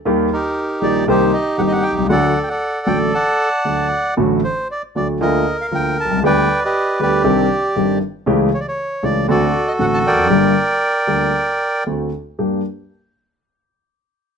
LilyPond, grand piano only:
\new Staff \with { instrumentName = "Grand piano" } { \clef bass \time 4/4 \key g \minor \tempo 4 = 117 <ees, ees g bes g'>8 r4 <bes,, bes, ees g bes g'>8 <c, c ees bes c' g'>8 r8 <g,, g, ees bes c' g'>8 r32 b,,32 c,32 cis,32 | <d, d fis a fis'>8 r4 <a,, a, d fis a fis'>8 r4 <d, d fis a fis'>8 r8 | <a,, a, d fis a fis'>8 r4 <d, d fis a fis'>8 <d, d f bes f'>8 r8 <d, d f bes f'>8 r32 b,,32 c,32 cis,32 | <d, d g b g'>8 r4 <d, d g b g'>8 <c, c ees c' d' g'>8 r8 <g,, g, ees c' d' g'>8 r8 |
<cis, cis e a cis' g'>8 r4 <cis, cis e a cis' g'>8 <d, d a c' fis'>8 r8 <a,, a, d a c' fis'>8 r32 e,32 f,32 fis,32 | <g,, g, d g bes g'>8 r4 <d, d g bes g'>8 r4 <d, d a c' fis'>8 r8 | <g, bes d' g'>8 r2. r8 | }